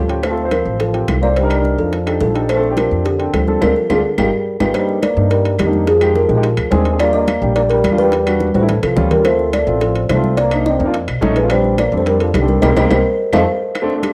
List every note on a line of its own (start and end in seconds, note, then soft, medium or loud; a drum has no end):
0.00 0.60 D2 medium
0.00 0.21 F3 medium
0.00 0.24 A4 medium
0.08 0.23 C#4 medium
0.08 0.23 F4 medium
0.08 0.23 G4 medium
0.08 high bongo soft
0.08 high conga soft
0.08 high timbale medium
0.23 0.49 A3 medium
0.23 0.52 C5 loud
0.23 high bongo medium
0.23 high conga soft
0.23 high timbale medium
0.23 claves medium
0.29 0.40 C4 medium
0.29 0.40 F4 medium
0.29 0.40 A4 medium
0.37 high bongo soft
0.37 high conga soft
0.43 0.78 C4 medium
0.43 0.79 F4 medium
0.43 0.79 C5 medium
0.51 0.78 F3 medium
0.51 0.81 A#4 medium
0.51 high bongo medium
0.51 high conga medium
0.51 high timbale medium
0.51 claves medium
0.65 1.05 A1 medium
0.79 1.06 F3 medium
0.79 1.06 A4 medium
0.79 high bongo medium
0.79 high conga soft
0.79 high timbale medium
0.93 1.13 C4 medium
0.93 1.13 F4 medium
0.93 1.14 G4 medium
0.93 high bongo soft
0.93 high conga soft
0.93 high timbale medium
1.08 1.73 C2 medium
1.08 high bongo medium
1.08 low bongo medium
1.08 high conga medium
1.08 high timbale medium
1.08 low timbale medium
1.08 claves medium
1.21 1.28 A#3 medium
1.21 1.36 C4 medium
1.21 1.36 F4 medium
1.21 1.37 C5 medium
1.21 1.29 D5 medium
1.21 high bongo soft
1.21 high conga medium
1.36 1.76 G3 medium
1.36 1.76 C5 medium
1.36 high bongo medium
1.36 high timbale medium
1.42 1.53 D4 medium
1.42 1.53 D#4 medium
1.42 1.53 A#4 medium
1.50 high bongo soft
1.50 high conga soft
1.50 high timbale medium
1.50 claves medium
1.57 1.92 D4 medium
1.57 1.92 D#4 medium
1.57 1.92 A#4 medium
1.64 high bongo soft
1.64 high conga soft
1.78 2.18 F2 medium
1.78 2.18 F3 medium
1.78 2.20 A4 medium
1.78 high conga soft
1.93 high bongo medium
1.93 high conga soft
1.93 high timbale medium
2.06 2.26 D4 medium
2.06 2.26 D#4 medium
2.06 2.27 G4 medium
2.06 2.27 A4 medium
2.06 high bongo soft
2.06 high conga soft
2.06 high timbale medium
2.06 claves medium
2.20 2.86 A#1 medium
2.20 2.47 F3 medium
2.20 2.47 A4 medium
2.20 high bongo medium
2.20 low bongo medium
2.20 high conga medium
2.20 low timbale medium
2.34 2.49 D4 medium
2.34 2.49 D#4 medium
2.34 2.49 G4 medium
2.34 2.50 A4 medium
2.34 high bongo soft
2.34 high timbale medium
2.49 2.75 A3 medium
2.49 2.75 C5 loud
2.49 high bongo medium
2.49 high conga soft
2.49 high timbale medium
2.49 claves medium
2.55 2.66 C4 medium
2.55 2.66 D4 medium
2.55 2.66 A4 medium
2.63 high bongo soft
2.63 high conga soft
2.69 3.04 C4 medium
2.69 3.05 D4 medium
2.69 3.05 G4 medium
2.77 3.04 F3 medium
2.77 3.07 A#4 medium
2.77 high bongo medium
2.77 high conga medium
2.77 high timbale medium
2.77 claves medium
2.91 3.31 F2 medium
3.05 3.32 D3 medium
3.05 3.34 G4 medium
3.05 high bongo medium
3.05 high conga soft
3.05 high timbale medium
3.19 3.39 C4 medium
3.19 3.39 D4 medium
3.19 3.40 G4 medium
3.19 high bongo soft
3.19 high conga soft
3.19 high timbale medium
3.33 3.60 D2 medium
3.33 3.60 F3 medium
3.33 3.60 A4 medium
3.33 high bongo medium
3.33 low bongo medium
3.33 high conga medium
3.33 high timbale medium
3.33 claves medium
3.47 3.60 C4 medium
3.47 3.60 D4 medium
3.47 3.62 A4 medium
3.47 high bongo soft
3.47 high conga medium
3.61 3.72 D2 medium
3.61 3.76 G#3 medium
3.61 3.71 C4 medium
3.61 3.71 D4 medium
3.61 3.71 F4 medium
3.61 3.77 A#4 medium
3.61 high bongo medium
3.61 high conga medium
3.61 high timbale medium
3.61 claves medium
3.76 3.89 F3 medium
3.76 3.89 A4 medium
3.90 4.00 D2 medium
3.90 4.17 D3 medium
3.90 3.99 C4 medium
3.90 3.99 D4 medium
3.90 3.99 F4 medium
3.90 4.20 G#4 medium
3.90 high bongo medium
3.90 high conga medium
3.90 high timbale medium
3.90 claves medium
4.18 4.29 G1 medium
4.18 4.58 G3 medium
4.18 4.27 D#4 medium
4.18 4.27 F4 medium
4.18 4.27 G4 medium
4.18 4.58 A#4 medium
4.18 high bongo medium
4.18 high conga medium
4.18 high timbale medium
4.18 claves medium
4.60 4.71 G1 medium
4.60 4.74 G#3 medium
4.60 4.69 D#4 medium
4.60 4.70 F4 medium
4.60 4.69 G4 medium
4.60 4.74 B4 medium
4.60 high bongo medium
4.60 high conga medium
4.60 high timbale medium
4.60 claves medium
4.74 5.01 G3 medium
4.74 5.04 A#3 medium
4.74 5.04 D4 medium
4.74 5.05 D#4 medium
4.74 5.04 C5 medium
4.74 high bongo medium
4.74 high conga soft
4.74 high timbale medium
4.74 claves medium
4.89 high bongo soft
4.89 high conga soft
5.03 5.29 A#3 medium
5.03 5.32 D5 medium
5.03 high bongo medium
5.03 high conga medium
5.03 high timbale medium
5.03 claves medium
5.16 5.56 G2 medium
5.16 5.51 A#3 medium
5.16 5.52 D4 medium
5.16 5.52 D#4 medium
5.31 5.57 G3 medium
5.31 5.57 A#4 medium
5.31 high bongo medium
5.31 high conga soft
5.31 high timbale medium
5.45 high bongo soft
5.45 high conga soft
5.45 high timbale medium
5.59 6.24 F2 medium
5.59 5.85 D#3 medium
5.59 5.88 G4 medium
5.59 high bongo medium
5.59 low bongo medium
5.59 high conga medium
5.59 high timbale medium
5.59 claves medium
5.65 5.87 A#3 medium
5.65 5.87 D4 medium
5.65 5.88 D#4 medium
5.73 high bongo soft
5.73 high conga medium
5.87 6.13 F3 medium
5.87 6.14 G#4 loud
5.87 high bongo medium
5.87 high timbale medium
6.00 6.21 G#3 medium
6.00 6.21 D#4 medium
6.00 6.21 G4 medium
6.00 high bongo soft
6.00 high conga soft
6.00 high timbale medium
6.00 claves medium
6.15 6.67 F3 medium
6.15 6.68 A#4 medium
6.15 high bongo medium
6.15 high conga medium
6.28 6.56 A#1 medium
6.28 6.34 G#3 medium
6.28 6.34 D#4 medium
6.28 6.35 G4 medium
6.36 6.43 G#3 medium
6.36 6.44 D#4 medium
6.36 6.44 G4 medium
6.43 high bongo medium
6.43 high conga soft
6.43 high timbale medium
6.57 6.71 D2 medium
6.57 high bongo soft
6.57 high conga soft
6.57 high timbale medium
6.57 claves medium
6.71 7.37 D#2 medium
6.71 6.98 G#3 medium
6.71 6.86 C4 medium
6.71 6.87 D4 medium
6.71 6.87 G#4 medium
6.71 6.98 C5 medium
6.71 high bongo medium
6.71 low bongo medium
6.71 high conga medium
6.71 low timbale medium
6.85 high bongo soft
6.85 high timbale medium
6.91 6.97 C4 medium
6.91 6.98 D4 medium
6.91 6.98 G#4 medium
6.99 7.29 G3 medium
6.99 7.13 A#3 medium
6.99 7.29 D4 medium
6.99 7.30 F4 medium
6.99 7.13 D5 loud
6.99 high bongo medium
6.99 high conga soft
6.99 high timbale medium
6.99 claves medium
7.13 7.53 A#3 medium
7.13 7.53 D#5 loud
7.13 high bongo soft
7.13 high conga soft
7.28 high bongo medium
7.28 high conga loud
7.28 high timbale medium
7.28 claves medium
7.41 7.81 A#1 medium
7.41 7.76 G3 medium
7.41 7.77 D4 medium
7.41 7.77 G4 medium
7.56 7.63 A#3 medium
7.56 7.62 D5 loud
7.56 high bongo medium
7.56 high conga soft
7.56 high timbale medium
7.70 7.97 G3 medium
7.70 7.99 A#4 medium
7.70 high bongo soft
7.70 high conga soft
7.70 high timbale medium
7.84 8.49 E2 medium
7.84 high bongo medium
7.84 low bongo medium
7.84 high conga medium
7.84 high timbale medium
7.84 claves medium
7.90 8.12 G3 medium
7.90 8.12 D4 medium
7.90 8.13 F4 medium
7.98 8.38 G3 medium
7.98 8.38 B4 loud
7.98 high bongo soft
7.98 high conga medium
8.12 high bongo medium
8.12 high timbale medium
8.26 8.46 G3 medium
8.26 8.46 D4 medium
8.26 8.47 F#4 medium
8.26 high bongo soft
8.26 high conga soft
8.26 high timbale medium
8.26 claves medium
8.40 high bongo medium
8.40 high conga medium
8.54 8.81 A1 medium
8.54 8.59 G3 medium
8.54 8.81 A3 medium
8.54 8.60 D4 medium
8.54 8.60 F#4 medium
8.54 8.81 C5 medium
8.54 high conga loud
8.61 8.68 G3 medium
8.61 8.69 D4 medium
8.61 8.69 E4 medium
8.69 high bongo medium
8.69 low conga medium
8.69 high timbale medium
8.82 8.96 C2 medium
8.82 9.09 F3 medium
8.82 9.12 A4 medium
8.82 high bongo soft
8.82 low conga medium
8.82 high timbale medium
8.82 claves medium
8.96 9.62 D2 medium
8.96 9.11 G3 medium
8.96 9.12 C#4 medium
8.96 9.12 F4 medium
8.96 high bongo medium
8.96 low bongo medium
8.96 low conga loud
9.11 9.24 G3 medium
9.11 9.24 A#4 medium
9.11 high bongo soft
9.11 low conga medium
9.11 high timbale medium
9.18 9.23 G3 medium
9.18 9.23 C#4 medium
9.18 9.24 F4 medium
9.25 9.54 A3 medium
9.25 9.52 A3 medium
9.25 9.55 C4 medium
9.25 9.55 F4 medium
9.25 9.54 C5 loud
9.25 high bongo medium
9.25 high conga soft
9.25 high timbale medium
9.25 claves medium
9.39 high bongo soft
9.39 high conga soft
9.53 9.80 A3 medium
9.53 9.82 D5 medium
9.53 high bongo medium
9.53 high conga medium
9.53 high timbale medium
9.53 claves medium
9.66 10.06 A1 medium
9.66 10.01 A3 medium
9.66 10.02 C4 medium
9.66 10.02 F4 medium
9.81 10.08 F3 medium
9.81 10.07 A4 medium
9.81 high bongo medium
9.81 high conga soft
9.81 high timbale medium
9.95 high bongo soft
9.95 high conga soft
9.95 high timbale medium
10.09 10.74 C2 medium
10.09 10.36 A3 medium
10.09 10.38 C5 loud
10.09 high bongo medium
10.09 low bongo medium
10.09 high conga medium
10.09 high timbale loud
10.09 low timbale medium
10.09 claves medium
10.15 10.37 A3 medium
10.15 10.37 C4 medium
10.15 10.38 F4 medium
10.24 high bongo soft
10.24 high conga medium
10.37 10.64 A#3 medium
10.37 10.66 D5 loud
10.37 high bongo medium
10.37 high timbale medium
10.51 10.71 A#3 medium
10.51 10.71 D4 medium
10.51 10.72 D#4 medium
10.51 high bongo soft
10.51 high conga soft
10.51 high timbale medium
10.51 claves medium
10.66 10.92 C4 medium
10.66 11.18 D#5 medium
10.66 high bongo medium
10.66 high conga medium
10.79 11.06 F2 medium
10.79 10.84 A#3 medium
10.79 10.85 D4 medium
10.79 10.85 D#4 medium
10.79 high conga soft
10.86 10.93 A#3 medium
10.86 10.94 D4 medium
10.86 10.94 F4 medium
10.94 high bongo medium
10.94 high conga soft
10.94 high timbale medium
11.07 11.21 B1 medium
11.07 high bongo soft
11.07 high conga soft
11.07 high timbale medium
11.07 claves medium
11.21 11.87 A#1 medium
11.21 11.36 A3 loud
11.21 11.37 C#4 medium
11.21 11.37 D#4 loud
11.21 high bongo medium
11.21 low bongo medium
11.21 high conga medium
11.21 low timbale medium
11.36 11.49 G#3 medium
11.36 11.51 B4 medium
11.36 high bongo soft
11.36 high timbale medium
11.42 11.47 A3 medium
11.42 11.48 C#4 medium
11.42 11.48 F4 medium
11.49 11.79 G3 medium
11.49 11.77 G3 medium
11.49 11.79 C4 medium
11.49 11.80 D4 medium
11.49 11.80 C5 loud
11.49 high bongo medium
11.49 high conga soft
11.49 high timbale medium
11.49 claves medium
11.64 high bongo soft
11.64 high conga soft
11.78 11.96 A#3 medium
11.78 11.96 D5 medium
11.78 high bongo medium
11.78 high conga medium
11.78 high timbale medium
11.78 claves medium
11.92 12.31 F2 medium
11.92 12.27 G3 medium
11.92 12.27 C4 medium
11.92 12.27 D4 medium
11.97 12.01 A3 medium
11.97 12.02 C5 medium
12.06 12.20 G3 medium
12.06 12.21 A#4 medium
12.06 high bongo medium
12.06 high conga soft
12.06 high timbale medium
12.20 12.34 F3 medium
12.20 12.34 A4 medium
12.20 high bongo soft
12.20 high conga soft
12.20 high timbale medium
12.34 12.60 C2 medium
12.34 12.48 D3 medium
12.34 12.49 G4 medium
12.34 high bongo medium
12.34 low bongo medium
12.34 high conga medium
12.34 high timbale loud
12.34 low timbale medium
12.34 claves medium
12.41 12.62 G3 medium
12.41 12.61 C4 medium
12.41 12.63 D4 medium
12.48 12.62 G3 medium
12.48 12.61 A#4 medium
12.48 high bongo soft
12.48 high conga medium
12.62 12.73 C2 loud
12.62 12.69 G3 medium
12.62 12.71 A#3 medium
12.62 12.71 C4 medium
12.62 12.72 D#4 medium
12.62 12.71 A#4 loud
12.62 12.71 C5 medium
12.62 12.71 D#5 loud
12.62 high bongo medium
12.62 high conga medium
12.62 high timbale medium
12.62 claves medium
12.76 12.87 C2 medium
12.76 12.84 G3 medium
12.76 12.86 A#3 medium
12.76 12.86 C4 medium
12.76 12.86 D#4 loud
12.76 12.86 A#4 medium
12.76 12.86 C5 medium
12.76 12.86 D#5 medium
12.76 high bongo loud
12.76 high conga loud
12.76 high timbale loud
12.76 claves medium
12.90 13.01 C2 medium
12.90 12.98 G3 medium
12.90 13.00 A#3 medium
12.90 13.00 C4 loud
12.90 13.00 D#4 medium
12.90 13.00 A#4 medium
12.90 13.00 C5 medium
12.90 13.00 D#5 medium
12.90 high bongo medium
12.90 high conga loud
12.90 high timbale medium
12.90 claves medium
13.33 13.43 F2 medium
13.33 13.40 A3 loud
13.33 13.42 C4 medium
13.33 13.42 D#4 medium
13.33 13.42 F4 medium
13.33 13.42 C5 medium
13.33 13.42 D#5 medium
13.33 13.42 F5 medium
13.33 high bongo medium
13.33 high conga loud
13.33 high timbale loud
13.33 claves medium
13.75 high bongo medium
13.75 high conga soft
13.75 high timbale medium
13.75 claves medium
13.82 13.92 A3 medium
13.82 13.92 C4 medium
13.82 13.93 D4 loud
13.89 high bongo soft
13.89 high conga soft
13.96 14.13 A3 medium
13.96 14.13 C4 medium
13.96 14.13 D4 medium
14.03 14.13 G4 medium
14.03 high bongo medium
14.03 high conga medium
14.03 high timbale medium
14.03 claves medium